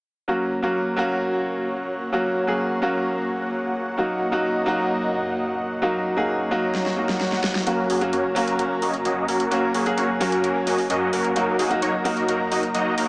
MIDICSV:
0, 0, Header, 1, 7, 480
1, 0, Start_track
1, 0, Tempo, 461538
1, 296, Time_signature, 4, 2, 24, 8
1, 13605, End_track
2, 0, Start_track
2, 0, Title_t, "Analog synth pad"
2, 0, Program_c, 0, 89
2, 294, Note_on_c, 0, 58, 74
2, 294, Note_on_c, 0, 78, 82
2, 295, Note_on_c, 0, 66, 73
2, 295, Note_on_c, 0, 73, 70
2, 4097, Note_off_c, 0, 73, 0
2, 4137, Note_on_c, 0, 42, 75
2, 4137, Note_on_c, 0, 75, 71
2, 6037, Note_off_c, 0, 75, 0
2, 6058, Note_on_c, 0, 73, 68
2, 7933, Note_off_c, 0, 58, 0
2, 7934, Note_off_c, 0, 66, 0
2, 7934, Note_off_c, 0, 78, 0
2, 7938, Note_off_c, 0, 42, 0
2, 7958, Note_off_c, 0, 73, 0
2, 7975, Note_on_c, 0, 66, 80
2, 7976, Note_on_c, 0, 70, 69
2, 7976, Note_on_c, 0, 73, 68
2, 7976, Note_on_c, 0, 82, 87
2, 9877, Note_off_c, 0, 82, 0
2, 9897, Note_on_c, 0, 80, 87
2, 11778, Note_off_c, 0, 73, 0
2, 11798, Note_off_c, 0, 80, 0
2, 11815, Note_on_c, 0, 75, 71
2, 11815, Note_on_c, 0, 82, 85
2, 13605, Note_off_c, 0, 66, 0
2, 13605, Note_off_c, 0, 70, 0
2, 13605, Note_off_c, 0, 75, 0
2, 13605, Note_off_c, 0, 82, 0
2, 13605, End_track
3, 0, Start_track
3, 0, Title_t, "Supersaw synth"
3, 0, Program_c, 1, 81
3, 7976, Note_on_c, 1, 58, 69
3, 7976, Note_on_c, 1, 61, 71
3, 7976, Note_on_c, 1, 66, 73
3, 7976, Note_on_c, 1, 70, 89
3, 7977, Note_on_c, 1, 54, 81
3, 8187, Note_off_c, 1, 58, 0
3, 8188, Note_off_c, 1, 54, 0
3, 8188, Note_off_c, 1, 61, 0
3, 8188, Note_off_c, 1, 66, 0
3, 8188, Note_off_c, 1, 70, 0
3, 8215, Note_on_c, 1, 61, 74
3, 8215, Note_on_c, 1, 66, 76
3, 8216, Note_on_c, 1, 54, 81
3, 8216, Note_on_c, 1, 58, 79
3, 8216, Note_on_c, 1, 68, 86
3, 8342, Note_off_c, 1, 54, 0
3, 8342, Note_off_c, 1, 58, 0
3, 8342, Note_off_c, 1, 61, 0
3, 8342, Note_off_c, 1, 66, 0
3, 8342, Note_off_c, 1, 68, 0
3, 8456, Note_on_c, 1, 54, 90
3, 8456, Note_on_c, 1, 58, 84
3, 8456, Note_on_c, 1, 61, 86
3, 8456, Note_on_c, 1, 66, 88
3, 8456, Note_on_c, 1, 73, 104
3, 8582, Note_off_c, 1, 54, 0
3, 8582, Note_off_c, 1, 58, 0
3, 8582, Note_off_c, 1, 61, 0
3, 8582, Note_off_c, 1, 66, 0
3, 8582, Note_off_c, 1, 73, 0
3, 8696, Note_on_c, 1, 54, 79
3, 8696, Note_on_c, 1, 58, 69
3, 8696, Note_on_c, 1, 66, 68
3, 8696, Note_on_c, 1, 70, 86
3, 8697, Note_on_c, 1, 61, 71
3, 8898, Note_off_c, 1, 54, 0
3, 8898, Note_off_c, 1, 58, 0
3, 8898, Note_off_c, 1, 61, 0
3, 8898, Note_off_c, 1, 66, 0
3, 8898, Note_off_c, 1, 70, 0
3, 8936, Note_on_c, 1, 54, 79
3, 8936, Note_on_c, 1, 58, 79
3, 8936, Note_on_c, 1, 61, 73
3, 8936, Note_on_c, 1, 66, 73
3, 8936, Note_on_c, 1, 70, 91
3, 9062, Note_off_c, 1, 54, 0
3, 9062, Note_off_c, 1, 58, 0
3, 9062, Note_off_c, 1, 61, 0
3, 9062, Note_off_c, 1, 66, 0
3, 9062, Note_off_c, 1, 70, 0
3, 9176, Note_on_c, 1, 54, 74
3, 9176, Note_on_c, 1, 58, 65
3, 9176, Note_on_c, 1, 61, 66
3, 9176, Note_on_c, 1, 66, 69
3, 9176, Note_on_c, 1, 75, 82
3, 9302, Note_off_c, 1, 54, 0
3, 9302, Note_off_c, 1, 58, 0
3, 9302, Note_off_c, 1, 61, 0
3, 9302, Note_off_c, 1, 66, 0
3, 9302, Note_off_c, 1, 75, 0
3, 9415, Note_on_c, 1, 54, 95
3, 9415, Note_on_c, 1, 58, 92
3, 9415, Note_on_c, 1, 61, 83
3, 9415, Note_on_c, 1, 66, 89
3, 9415, Note_on_c, 1, 75, 101
3, 9627, Note_off_c, 1, 54, 0
3, 9627, Note_off_c, 1, 58, 0
3, 9627, Note_off_c, 1, 61, 0
3, 9627, Note_off_c, 1, 66, 0
3, 9627, Note_off_c, 1, 75, 0
3, 9656, Note_on_c, 1, 54, 78
3, 9656, Note_on_c, 1, 58, 71
3, 9656, Note_on_c, 1, 61, 75
3, 9656, Note_on_c, 1, 66, 75
3, 9656, Note_on_c, 1, 70, 90
3, 9867, Note_off_c, 1, 54, 0
3, 9867, Note_off_c, 1, 58, 0
3, 9867, Note_off_c, 1, 61, 0
3, 9867, Note_off_c, 1, 70, 0
3, 9868, Note_off_c, 1, 66, 0
3, 9896, Note_on_c, 1, 54, 77
3, 9896, Note_on_c, 1, 58, 69
3, 9896, Note_on_c, 1, 61, 73
3, 9896, Note_on_c, 1, 66, 75
3, 9896, Note_on_c, 1, 70, 83
3, 10107, Note_off_c, 1, 54, 0
3, 10107, Note_off_c, 1, 58, 0
3, 10107, Note_off_c, 1, 61, 0
3, 10107, Note_off_c, 1, 66, 0
3, 10107, Note_off_c, 1, 70, 0
3, 10135, Note_on_c, 1, 54, 82
3, 10135, Note_on_c, 1, 66, 77
3, 10136, Note_on_c, 1, 58, 75
3, 10136, Note_on_c, 1, 61, 77
3, 10136, Note_on_c, 1, 68, 96
3, 10262, Note_off_c, 1, 54, 0
3, 10262, Note_off_c, 1, 58, 0
3, 10262, Note_off_c, 1, 61, 0
3, 10262, Note_off_c, 1, 66, 0
3, 10262, Note_off_c, 1, 68, 0
3, 10374, Note_on_c, 1, 54, 87
3, 10374, Note_on_c, 1, 58, 81
3, 10374, Note_on_c, 1, 61, 85
3, 10375, Note_on_c, 1, 66, 85
3, 10375, Note_on_c, 1, 73, 99
3, 10501, Note_off_c, 1, 54, 0
3, 10501, Note_off_c, 1, 58, 0
3, 10501, Note_off_c, 1, 61, 0
3, 10501, Note_off_c, 1, 66, 0
3, 10502, Note_off_c, 1, 73, 0
3, 10615, Note_on_c, 1, 54, 78
3, 10616, Note_on_c, 1, 58, 71
3, 10616, Note_on_c, 1, 61, 73
3, 10616, Note_on_c, 1, 66, 72
3, 10616, Note_on_c, 1, 70, 84
3, 10817, Note_off_c, 1, 54, 0
3, 10817, Note_off_c, 1, 66, 0
3, 10817, Note_off_c, 1, 70, 0
3, 10818, Note_off_c, 1, 58, 0
3, 10818, Note_off_c, 1, 61, 0
3, 10856, Note_on_c, 1, 54, 78
3, 10856, Note_on_c, 1, 58, 74
3, 10856, Note_on_c, 1, 61, 76
3, 10856, Note_on_c, 1, 66, 75
3, 10856, Note_on_c, 1, 70, 92
3, 10982, Note_off_c, 1, 54, 0
3, 10982, Note_off_c, 1, 58, 0
3, 10982, Note_off_c, 1, 61, 0
3, 10982, Note_off_c, 1, 66, 0
3, 10982, Note_off_c, 1, 70, 0
3, 11095, Note_on_c, 1, 61, 70
3, 11095, Note_on_c, 1, 66, 66
3, 11095, Note_on_c, 1, 75, 84
3, 11096, Note_on_c, 1, 54, 73
3, 11096, Note_on_c, 1, 58, 69
3, 11222, Note_off_c, 1, 54, 0
3, 11222, Note_off_c, 1, 58, 0
3, 11222, Note_off_c, 1, 61, 0
3, 11222, Note_off_c, 1, 66, 0
3, 11222, Note_off_c, 1, 75, 0
3, 11335, Note_on_c, 1, 61, 83
3, 11336, Note_on_c, 1, 54, 98
3, 11336, Note_on_c, 1, 58, 89
3, 11336, Note_on_c, 1, 66, 93
3, 11336, Note_on_c, 1, 75, 107
3, 11547, Note_off_c, 1, 54, 0
3, 11547, Note_off_c, 1, 58, 0
3, 11547, Note_off_c, 1, 61, 0
3, 11547, Note_off_c, 1, 66, 0
3, 11547, Note_off_c, 1, 75, 0
3, 11575, Note_on_c, 1, 54, 75
3, 11575, Note_on_c, 1, 58, 69
3, 11575, Note_on_c, 1, 61, 70
3, 11575, Note_on_c, 1, 66, 75
3, 11575, Note_on_c, 1, 70, 92
3, 11787, Note_off_c, 1, 54, 0
3, 11787, Note_off_c, 1, 58, 0
3, 11787, Note_off_c, 1, 61, 0
3, 11787, Note_off_c, 1, 66, 0
3, 11787, Note_off_c, 1, 70, 0
3, 11815, Note_on_c, 1, 54, 81
3, 11815, Note_on_c, 1, 58, 72
3, 11815, Note_on_c, 1, 63, 76
3, 11815, Note_on_c, 1, 66, 71
3, 11815, Note_on_c, 1, 70, 85
3, 12027, Note_off_c, 1, 54, 0
3, 12027, Note_off_c, 1, 58, 0
3, 12027, Note_off_c, 1, 63, 0
3, 12027, Note_off_c, 1, 66, 0
3, 12027, Note_off_c, 1, 70, 0
3, 12055, Note_on_c, 1, 54, 80
3, 12055, Note_on_c, 1, 58, 73
3, 12055, Note_on_c, 1, 63, 81
3, 12055, Note_on_c, 1, 66, 76
3, 12055, Note_on_c, 1, 68, 92
3, 12181, Note_off_c, 1, 68, 0
3, 12182, Note_off_c, 1, 54, 0
3, 12182, Note_off_c, 1, 58, 0
3, 12182, Note_off_c, 1, 63, 0
3, 12182, Note_off_c, 1, 66, 0
3, 12295, Note_on_c, 1, 54, 88
3, 12295, Note_on_c, 1, 58, 82
3, 12295, Note_on_c, 1, 63, 84
3, 12295, Note_on_c, 1, 66, 85
3, 12295, Note_on_c, 1, 73, 102
3, 12422, Note_off_c, 1, 54, 0
3, 12422, Note_off_c, 1, 58, 0
3, 12422, Note_off_c, 1, 63, 0
3, 12422, Note_off_c, 1, 66, 0
3, 12422, Note_off_c, 1, 73, 0
3, 12536, Note_on_c, 1, 54, 75
3, 12536, Note_on_c, 1, 58, 72
3, 12536, Note_on_c, 1, 63, 73
3, 12536, Note_on_c, 1, 66, 69
3, 12536, Note_on_c, 1, 70, 91
3, 12738, Note_off_c, 1, 54, 0
3, 12738, Note_off_c, 1, 58, 0
3, 12738, Note_off_c, 1, 63, 0
3, 12738, Note_off_c, 1, 66, 0
3, 12738, Note_off_c, 1, 70, 0
3, 12776, Note_on_c, 1, 54, 85
3, 12776, Note_on_c, 1, 58, 77
3, 12776, Note_on_c, 1, 66, 77
3, 12776, Note_on_c, 1, 70, 95
3, 12777, Note_on_c, 1, 63, 79
3, 12902, Note_off_c, 1, 54, 0
3, 12902, Note_off_c, 1, 58, 0
3, 12902, Note_off_c, 1, 63, 0
3, 12902, Note_off_c, 1, 66, 0
3, 12902, Note_off_c, 1, 70, 0
3, 13017, Note_on_c, 1, 54, 73
3, 13017, Note_on_c, 1, 58, 69
3, 13017, Note_on_c, 1, 63, 66
3, 13017, Note_on_c, 1, 66, 68
3, 13017, Note_on_c, 1, 75, 81
3, 13143, Note_off_c, 1, 54, 0
3, 13143, Note_off_c, 1, 58, 0
3, 13143, Note_off_c, 1, 63, 0
3, 13143, Note_off_c, 1, 66, 0
3, 13143, Note_off_c, 1, 75, 0
3, 13256, Note_on_c, 1, 54, 93
3, 13256, Note_on_c, 1, 58, 86
3, 13256, Note_on_c, 1, 63, 83
3, 13256, Note_on_c, 1, 66, 88
3, 13256, Note_on_c, 1, 75, 111
3, 13467, Note_off_c, 1, 54, 0
3, 13467, Note_off_c, 1, 58, 0
3, 13467, Note_off_c, 1, 63, 0
3, 13467, Note_off_c, 1, 66, 0
3, 13467, Note_off_c, 1, 75, 0
3, 13496, Note_on_c, 1, 54, 81
3, 13496, Note_on_c, 1, 58, 70
3, 13496, Note_on_c, 1, 63, 71
3, 13496, Note_on_c, 1, 66, 71
3, 13496, Note_on_c, 1, 70, 85
3, 13605, Note_off_c, 1, 54, 0
3, 13605, Note_off_c, 1, 58, 0
3, 13605, Note_off_c, 1, 63, 0
3, 13605, Note_off_c, 1, 66, 0
3, 13605, Note_off_c, 1, 70, 0
3, 13605, End_track
4, 0, Start_track
4, 0, Title_t, "Grand piano"
4, 0, Program_c, 2, 0
4, 288, Note_on_c, 2, 54, 78
4, 293, Note_on_c, 2, 58, 74
4, 296, Note_on_c, 2, 61, 71
4, 301, Note_on_c, 2, 66, 90
4, 493, Control_c, 2, 64, 127
4, 623, Note_off_c, 2, 54, 0
4, 626, Note_off_c, 2, 58, 0
4, 627, Note_off_c, 2, 61, 0
4, 630, Note_off_c, 2, 66, 0
4, 649, Note_on_c, 2, 54, 84
4, 653, Note_on_c, 2, 58, 79
4, 658, Note_on_c, 2, 61, 74
4, 662, Note_on_c, 2, 66, 94
4, 712, Note_off_c, 2, 54, 0
4, 714, Note_off_c, 2, 58, 0
4, 716, Note_off_c, 2, 61, 0
4, 718, Note_off_c, 2, 66, 0
4, 1002, Note_on_c, 2, 54, 93
4, 1011, Note_on_c, 2, 58, 89
4, 1019, Note_on_c, 2, 61, 88
4, 1028, Note_on_c, 2, 66, 109
4, 2181, Note_off_c, 2, 54, 0
4, 2185, Note_off_c, 2, 58, 0
4, 2189, Note_off_c, 2, 61, 0
4, 2193, Note_off_c, 2, 66, 0
4, 2209, Note_on_c, 2, 54, 94
4, 2213, Note_on_c, 2, 58, 83
4, 2218, Note_on_c, 2, 61, 84
4, 2222, Note_on_c, 2, 66, 97
4, 2544, Note_off_c, 2, 54, 0
4, 2546, Note_off_c, 2, 58, 0
4, 2548, Note_off_c, 2, 61, 0
4, 2550, Note_off_c, 2, 66, 0
4, 2571, Note_on_c, 2, 54, 85
4, 2574, Note_on_c, 2, 58, 76
4, 2578, Note_on_c, 2, 61, 73
4, 2583, Note_on_c, 2, 68, 91
4, 2905, Note_off_c, 2, 54, 0
4, 2906, Note_off_c, 2, 58, 0
4, 2908, Note_off_c, 2, 61, 0
4, 2911, Note_off_c, 2, 68, 0
4, 2930, Note_on_c, 2, 54, 96
4, 2934, Note_on_c, 2, 58, 88
4, 2939, Note_on_c, 2, 61, 87
4, 2943, Note_on_c, 2, 66, 99
4, 2992, Note_off_c, 2, 54, 0
4, 2994, Note_off_c, 2, 58, 0
4, 2997, Note_off_c, 2, 61, 0
4, 2999, Note_off_c, 2, 66, 0
4, 4132, Note_on_c, 2, 54, 84
4, 4136, Note_on_c, 2, 58, 73
4, 4140, Note_on_c, 2, 63, 78
4, 4145, Note_on_c, 2, 66, 90
4, 4150, Control_c, 2, 64, 0
4, 4322, Control_c, 2, 64, 127
4, 4465, Note_off_c, 2, 54, 0
4, 4467, Note_off_c, 2, 58, 0
4, 4469, Note_off_c, 2, 63, 0
4, 4472, Note_off_c, 2, 66, 0
4, 4491, Note_on_c, 2, 54, 88
4, 4495, Note_on_c, 2, 58, 79
4, 4499, Note_on_c, 2, 63, 81
4, 4502, Note_on_c, 2, 66, 98
4, 4553, Note_off_c, 2, 54, 0
4, 4555, Note_off_c, 2, 58, 0
4, 4557, Note_off_c, 2, 63, 0
4, 4559, Note_off_c, 2, 66, 0
4, 4845, Note_on_c, 2, 54, 102
4, 4853, Note_on_c, 2, 58, 89
4, 4861, Note_on_c, 2, 63, 87
4, 4870, Note_on_c, 2, 66, 107
4, 6022, Note_off_c, 2, 54, 0
4, 6026, Note_off_c, 2, 58, 0
4, 6030, Note_off_c, 2, 63, 0
4, 6034, Note_off_c, 2, 66, 0
4, 6050, Note_on_c, 2, 54, 93
4, 6054, Note_on_c, 2, 58, 86
4, 6059, Note_on_c, 2, 63, 86
4, 6063, Note_on_c, 2, 66, 96
4, 6384, Note_off_c, 2, 54, 0
4, 6386, Note_off_c, 2, 58, 0
4, 6389, Note_off_c, 2, 63, 0
4, 6391, Note_off_c, 2, 66, 0
4, 6410, Note_on_c, 2, 54, 80
4, 6414, Note_on_c, 2, 58, 79
4, 6419, Note_on_c, 2, 63, 79
4, 6422, Note_on_c, 2, 68, 94
4, 6744, Note_off_c, 2, 54, 0
4, 6746, Note_off_c, 2, 58, 0
4, 6749, Note_off_c, 2, 63, 0
4, 6750, Note_off_c, 2, 68, 0
4, 6770, Note_on_c, 2, 54, 98
4, 6775, Note_on_c, 2, 58, 94
4, 6779, Note_on_c, 2, 63, 86
4, 6783, Note_on_c, 2, 66, 105
4, 6833, Note_off_c, 2, 54, 0
4, 6835, Note_off_c, 2, 58, 0
4, 6837, Note_off_c, 2, 63, 0
4, 6839, Note_off_c, 2, 66, 0
4, 7243, Note_on_c, 2, 54, 77
4, 7251, Note_on_c, 2, 58, 69
4, 7260, Note_on_c, 2, 63, 65
4, 7268, Note_on_c, 2, 66, 78
4, 7941, Note_off_c, 2, 54, 0
4, 7945, Note_off_c, 2, 58, 0
4, 7949, Note_off_c, 2, 63, 0
4, 7953, Note_off_c, 2, 66, 0
4, 7970, Note_on_c, 2, 54, 81
4, 7974, Note_on_c, 2, 58, 75
4, 7979, Note_on_c, 2, 61, 72
4, 7982, Note_on_c, 2, 66, 92
4, 7988, Control_c, 2, 64, 0
4, 8155, Control_c, 2, 64, 127
4, 8304, Note_off_c, 2, 54, 0
4, 8306, Note_off_c, 2, 58, 0
4, 8309, Note_off_c, 2, 61, 0
4, 8310, Note_off_c, 2, 66, 0
4, 8329, Note_on_c, 2, 54, 86
4, 8333, Note_on_c, 2, 58, 81
4, 8337, Note_on_c, 2, 61, 80
4, 8342, Note_on_c, 2, 66, 98
4, 8392, Note_off_c, 2, 54, 0
4, 8394, Note_off_c, 2, 58, 0
4, 8396, Note_off_c, 2, 61, 0
4, 8398, Note_off_c, 2, 66, 0
4, 8682, Note_on_c, 2, 54, 97
4, 8690, Note_on_c, 2, 58, 88
4, 8699, Note_on_c, 2, 61, 91
4, 8707, Note_on_c, 2, 66, 105
4, 9860, Note_off_c, 2, 54, 0
4, 9864, Note_off_c, 2, 58, 0
4, 9869, Note_off_c, 2, 61, 0
4, 9873, Note_off_c, 2, 66, 0
4, 9888, Note_on_c, 2, 54, 89
4, 9894, Note_on_c, 2, 58, 87
4, 9898, Note_on_c, 2, 61, 86
4, 9902, Note_on_c, 2, 66, 104
4, 10224, Note_off_c, 2, 54, 0
4, 10226, Note_off_c, 2, 58, 0
4, 10228, Note_off_c, 2, 61, 0
4, 10230, Note_off_c, 2, 66, 0
4, 10251, Note_on_c, 2, 54, 81
4, 10255, Note_on_c, 2, 58, 81
4, 10259, Note_on_c, 2, 61, 79
4, 10262, Note_on_c, 2, 68, 92
4, 10585, Note_off_c, 2, 54, 0
4, 10587, Note_off_c, 2, 58, 0
4, 10589, Note_off_c, 2, 61, 0
4, 10591, Note_off_c, 2, 68, 0
4, 10610, Note_on_c, 2, 54, 94
4, 10614, Note_on_c, 2, 58, 94
4, 10618, Note_on_c, 2, 61, 95
4, 10622, Note_on_c, 2, 66, 106
4, 10673, Note_off_c, 2, 54, 0
4, 10675, Note_off_c, 2, 58, 0
4, 10677, Note_off_c, 2, 61, 0
4, 10679, Note_off_c, 2, 66, 0
4, 11809, Note_on_c, 2, 54, 88
4, 11813, Note_on_c, 2, 58, 75
4, 11817, Note_on_c, 2, 63, 78
4, 11821, Note_on_c, 2, 66, 95
4, 11832, Control_c, 2, 64, 0
4, 12005, Control_c, 2, 64, 127
4, 12144, Note_off_c, 2, 54, 0
4, 12146, Note_off_c, 2, 58, 0
4, 12148, Note_off_c, 2, 63, 0
4, 12150, Note_off_c, 2, 66, 0
4, 12168, Note_on_c, 2, 54, 91
4, 12172, Note_on_c, 2, 58, 80
4, 12177, Note_on_c, 2, 63, 84
4, 12181, Note_on_c, 2, 66, 97
4, 12231, Note_off_c, 2, 54, 0
4, 12234, Note_off_c, 2, 58, 0
4, 12236, Note_off_c, 2, 63, 0
4, 12238, Note_off_c, 2, 66, 0
4, 12524, Note_on_c, 2, 54, 94
4, 12531, Note_on_c, 2, 58, 89
4, 12540, Note_on_c, 2, 63, 88
4, 12549, Note_on_c, 2, 66, 110
4, 13605, Note_off_c, 2, 54, 0
4, 13605, Note_off_c, 2, 58, 0
4, 13605, Note_off_c, 2, 63, 0
4, 13605, Note_off_c, 2, 66, 0
4, 13605, End_track
5, 0, Start_track
5, 0, Title_t, "Detuned saw bass"
5, 0, Program_c, 3, 39
5, 7976, Note_on_c, 3, 30, 101
5, 8192, Note_off_c, 3, 30, 0
5, 8217, Note_on_c, 3, 30, 100
5, 8433, Note_off_c, 3, 30, 0
5, 8457, Note_on_c, 3, 30, 99
5, 8673, Note_off_c, 3, 30, 0
5, 8697, Note_on_c, 3, 30, 92
5, 8913, Note_off_c, 3, 30, 0
5, 8936, Note_on_c, 3, 30, 92
5, 9152, Note_off_c, 3, 30, 0
5, 9176, Note_on_c, 3, 30, 89
5, 9392, Note_off_c, 3, 30, 0
5, 9416, Note_on_c, 3, 30, 93
5, 9632, Note_off_c, 3, 30, 0
5, 9657, Note_on_c, 3, 30, 102
5, 9872, Note_off_c, 3, 30, 0
5, 9896, Note_on_c, 3, 30, 100
5, 10112, Note_off_c, 3, 30, 0
5, 10135, Note_on_c, 3, 30, 97
5, 10352, Note_off_c, 3, 30, 0
5, 10376, Note_on_c, 3, 30, 106
5, 10592, Note_off_c, 3, 30, 0
5, 10615, Note_on_c, 3, 30, 92
5, 10832, Note_off_c, 3, 30, 0
5, 10855, Note_on_c, 3, 30, 93
5, 11072, Note_off_c, 3, 30, 0
5, 11095, Note_on_c, 3, 30, 93
5, 11311, Note_off_c, 3, 30, 0
5, 11335, Note_on_c, 3, 42, 93
5, 11552, Note_off_c, 3, 42, 0
5, 11576, Note_on_c, 3, 30, 103
5, 11792, Note_off_c, 3, 30, 0
5, 11816, Note_on_c, 3, 30, 102
5, 12032, Note_off_c, 3, 30, 0
5, 12055, Note_on_c, 3, 30, 94
5, 12272, Note_off_c, 3, 30, 0
5, 12296, Note_on_c, 3, 30, 102
5, 12512, Note_off_c, 3, 30, 0
5, 12536, Note_on_c, 3, 30, 91
5, 12752, Note_off_c, 3, 30, 0
5, 12777, Note_on_c, 3, 30, 98
5, 12993, Note_off_c, 3, 30, 0
5, 13017, Note_on_c, 3, 30, 93
5, 13232, Note_off_c, 3, 30, 0
5, 13256, Note_on_c, 3, 30, 95
5, 13472, Note_off_c, 3, 30, 0
5, 13497, Note_on_c, 3, 30, 96
5, 13605, Note_off_c, 3, 30, 0
5, 13605, End_track
6, 0, Start_track
6, 0, Title_t, "Swell"
6, 0, Program_c, 4, 103
6, 7017, Note_on_c, 4, 60, 77
6, 7977, Note_off_c, 4, 60, 0
6, 13605, End_track
7, 0, Start_track
7, 0, Title_t, "Drums"
7, 7016, Note_on_c, 9, 38, 60
7, 7120, Note_off_c, 9, 38, 0
7, 7135, Note_on_c, 9, 38, 55
7, 7239, Note_off_c, 9, 38, 0
7, 7375, Note_on_c, 9, 38, 69
7, 7479, Note_off_c, 9, 38, 0
7, 7495, Note_on_c, 9, 38, 79
7, 7599, Note_off_c, 9, 38, 0
7, 7614, Note_on_c, 9, 38, 76
7, 7718, Note_off_c, 9, 38, 0
7, 7735, Note_on_c, 9, 38, 99
7, 7839, Note_off_c, 9, 38, 0
7, 7854, Note_on_c, 9, 38, 88
7, 7958, Note_off_c, 9, 38, 0
7, 7974, Note_on_c, 9, 42, 77
7, 8078, Note_off_c, 9, 42, 0
7, 8214, Note_on_c, 9, 46, 104
7, 8318, Note_off_c, 9, 46, 0
7, 8335, Note_on_c, 9, 42, 54
7, 8439, Note_off_c, 9, 42, 0
7, 8454, Note_on_c, 9, 42, 77
7, 8558, Note_off_c, 9, 42, 0
7, 8695, Note_on_c, 9, 46, 99
7, 8799, Note_off_c, 9, 46, 0
7, 8815, Note_on_c, 9, 42, 52
7, 8919, Note_off_c, 9, 42, 0
7, 8935, Note_on_c, 9, 42, 85
7, 9039, Note_off_c, 9, 42, 0
7, 9174, Note_on_c, 9, 46, 100
7, 9278, Note_off_c, 9, 46, 0
7, 9294, Note_on_c, 9, 42, 55
7, 9398, Note_off_c, 9, 42, 0
7, 9414, Note_on_c, 9, 42, 78
7, 9518, Note_off_c, 9, 42, 0
7, 9655, Note_on_c, 9, 46, 106
7, 9759, Note_off_c, 9, 46, 0
7, 9775, Note_on_c, 9, 42, 54
7, 9879, Note_off_c, 9, 42, 0
7, 9896, Note_on_c, 9, 42, 75
7, 10000, Note_off_c, 9, 42, 0
7, 10134, Note_on_c, 9, 46, 110
7, 10238, Note_off_c, 9, 46, 0
7, 10255, Note_on_c, 9, 42, 54
7, 10359, Note_off_c, 9, 42, 0
7, 10375, Note_on_c, 9, 42, 81
7, 10479, Note_off_c, 9, 42, 0
7, 10615, Note_on_c, 9, 46, 105
7, 10719, Note_off_c, 9, 46, 0
7, 10736, Note_on_c, 9, 42, 53
7, 10840, Note_off_c, 9, 42, 0
7, 10856, Note_on_c, 9, 42, 81
7, 10960, Note_off_c, 9, 42, 0
7, 11095, Note_on_c, 9, 46, 107
7, 11199, Note_off_c, 9, 46, 0
7, 11215, Note_on_c, 9, 46, 64
7, 11319, Note_off_c, 9, 46, 0
7, 11335, Note_on_c, 9, 42, 76
7, 11439, Note_off_c, 9, 42, 0
7, 11575, Note_on_c, 9, 46, 113
7, 11679, Note_off_c, 9, 46, 0
7, 11694, Note_on_c, 9, 42, 54
7, 11798, Note_off_c, 9, 42, 0
7, 11815, Note_on_c, 9, 42, 74
7, 11919, Note_off_c, 9, 42, 0
7, 12055, Note_on_c, 9, 46, 113
7, 12159, Note_off_c, 9, 46, 0
7, 12175, Note_on_c, 9, 42, 52
7, 12279, Note_off_c, 9, 42, 0
7, 12296, Note_on_c, 9, 42, 75
7, 12400, Note_off_c, 9, 42, 0
7, 12535, Note_on_c, 9, 46, 104
7, 12639, Note_off_c, 9, 46, 0
7, 12656, Note_on_c, 9, 42, 49
7, 12760, Note_off_c, 9, 42, 0
7, 12776, Note_on_c, 9, 42, 80
7, 12880, Note_off_c, 9, 42, 0
7, 13016, Note_on_c, 9, 46, 108
7, 13120, Note_off_c, 9, 46, 0
7, 13136, Note_on_c, 9, 42, 54
7, 13240, Note_off_c, 9, 42, 0
7, 13255, Note_on_c, 9, 42, 69
7, 13359, Note_off_c, 9, 42, 0
7, 13496, Note_on_c, 9, 46, 115
7, 13600, Note_off_c, 9, 46, 0
7, 13605, End_track
0, 0, End_of_file